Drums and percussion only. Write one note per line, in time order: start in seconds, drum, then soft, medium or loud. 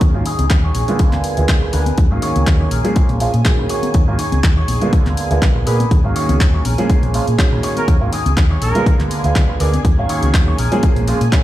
0.01 kick loud
0.01 closed hi-hat medium
0.14 tambourine soft
0.26 open hi-hat loud
0.39 closed hi-hat medium
0.39 tambourine medium
0.39 high conga medium
0.50 kick loud
0.50 clap loud
0.50 closed hi-hat medium
0.75 open hi-hat loud
0.88 closed hi-hat medium
0.88 tambourine medium
0.88 low conga medium
0.99 kick loud
0.99 closed hi-hat medium
1.13 clap soft
1.13 closed hi-hat soft
1.13 tambourine soft
1.13 high conga medium
1.24 open hi-hat loud
1.37 closed hi-hat medium
1.37 tambourine medium
1.48 kick loud
1.48 clap loud
1.48 closed hi-hat medium
1.48 tambourine medium
1.48 high conga medium
1.62 tambourine soft
1.73 open hi-hat loud
1.86 closed hi-hat medium
1.86 tambourine medium
1.86 high conga loud
1.98 kick loud
1.98 closed hi-hat medium
2.12 tambourine soft
2.22 open hi-hat loud
2.35 closed hi-hat medium
2.35 tambourine medium
2.35 high conga medium
2.47 kick loud
2.47 clap loud
2.47 closed hi-hat medium
2.60 tambourine soft
2.71 open hi-hat loud
2.84 closed hi-hat medium
2.84 tambourine medium
2.84 low conga medium
2.96 kick loud
2.96 closed hi-hat medium
3.09 closed hi-hat soft
3.09 tambourine soft
3.09 high conga loud
3.20 open hi-hat loud
3.33 closed hi-hat soft
3.33 tambourine medium
3.45 kick loud
3.45 clap loud
3.45 closed hi-hat medium
3.45 tambourine medium
3.45 high conga medium
3.69 open hi-hat loud
3.83 closed hi-hat medium
3.83 tambourine medium
3.83 high conga loud
3.94 kick loud
3.94 closed hi-hat medium
4.08 tambourine soft
4.19 open hi-hat loud
4.32 closed hi-hat medium
4.32 tambourine medium
4.32 high conga medium
4.44 kick loud
4.44 clap loud
4.44 closed hi-hat medium
4.57 tambourine soft
4.68 open hi-hat loud
4.68 high conga medium
4.81 closed hi-hat soft
4.81 tambourine medium
4.81 low conga medium
4.93 kick loud
4.93 closed hi-hat medium
4.93 tambourine medium
5.06 clap soft
5.06 closed hi-hat soft
5.06 tambourine soft
5.06 high conga medium
5.17 open hi-hat loud
5.30 closed hi-hat soft
5.30 tambourine medium
5.42 kick loud
5.42 clap loud
5.42 closed hi-hat medium
5.42 tambourine medium
5.42 high conga medium
5.56 tambourine soft
5.67 open hi-hat loud
5.79 closed hi-hat medium
5.79 tambourine medium
5.79 high conga medium
5.91 kick loud
5.91 closed hi-hat medium
5.91 tambourine medium
6.05 tambourine soft
6.16 open hi-hat loud
6.29 closed hi-hat medium
6.29 tambourine medium
6.29 high conga loud
6.40 kick loud
6.40 clap loud
6.40 closed hi-hat medium
6.53 tambourine soft
6.65 open hi-hat loud
6.65 high conga medium
6.78 closed hi-hat medium
6.78 tambourine medium
6.78 low conga medium
6.90 kick loud
6.90 closed hi-hat medium
7.02 closed hi-hat soft
7.02 tambourine soft
7.02 high conga medium
7.14 open hi-hat loud
7.27 closed hi-hat soft
7.27 tambourine medium
7.38 kick loud
7.38 clap loud
7.38 closed hi-hat medium
7.38 tambourine medium
7.38 high conga medium
7.63 open hi-hat loud
7.77 closed hi-hat medium
7.77 tambourine medium
7.77 high conga medium
7.88 kick loud
7.88 closed hi-hat medium
7.88 tambourine medium
8.01 tambourine soft
8.13 open hi-hat loud
8.26 closed hi-hat medium
8.26 tambourine medium
8.26 high conga medium
8.37 kick loud
8.37 clap loud
8.37 closed hi-hat medium
8.50 tambourine soft
8.62 open hi-hat loud
8.75 closed hi-hat medium
8.75 tambourine medium
8.75 low conga medium
8.86 kick loud
8.86 closed hi-hat medium
9.00 clap soft
9.00 closed hi-hat soft
9.00 tambourine soft
9.00 high conga medium
9.11 open hi-hat loud
9.24 closed hi-hat soft
9.24 tambourine medium
9.35 kick loud
9.35 clap loud
9.35 closed hi-hat medium
9.35 tambourine medium
9.35 high conga medium
9.49 tambourine soft
9.60 open hi-hat loud
9.73 closed hi-hat medium
9.73 tambourine medium
9.73 high conga medium
9.85 kick loud
9.85 closed hi-hat medium
9.98 tambourine soft
10.09 open hi-hat loud
10.23 closed hi-hat medium
10.23 tambourine medium
10.23 high conga medium
10.34 kick loud
10.34 clap loud
10.34 closed hi-hat medium
10.48 tambourine soft
10.58 open hi-hat loud
10.58 high conga medium
10.72 closed hi-hat medium
10.72 tambourine medium
10.72 low conga medium
10.83 kick loud
10.83 closed hi-hat medium
10.96 closed hi-hat soft
10.96 tambourine soft
10.96 high conga medium
11.08 open hi-hat loud
11.21 closed hi-hat medium
11.21 tambourine medium
11.32 kick loud
11.32 clap loud
11.32 closed hi-hat medium
11.32 tambourine medium
11.32 high conga medium